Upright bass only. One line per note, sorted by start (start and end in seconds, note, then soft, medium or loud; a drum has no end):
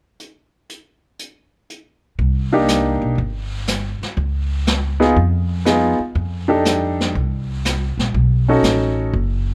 2.19 2.98 C2 medium
3.02 3.16 B1 medium
3.18 3.98 G1 medium
4.02 muted upright bass stroke soft
4.17 5.12 C#2 medium
5.16 5.96 F2 medium
6.00 muted upright bass stroke soft
6.15 7.11 F2 medium
7.15 7.95 C2 medium
7.98 8.13 A#1 medium
8.14 8.61 B1 medium
8.63 9.09 A1 medium
9.13 9.54 F#1 medium